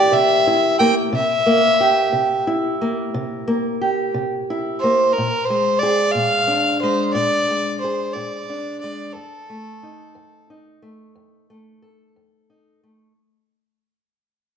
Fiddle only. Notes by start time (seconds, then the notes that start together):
Already playing: D5
0.13 E5
0.79 G5
1.15 E5
4.80 C5
5.13 A#4
5.45 C5
5.79 D5
6.12 F5
6.82 C5
7.14 D5
7.81 C5
8.13 D5
8.81 D5
9.12 A4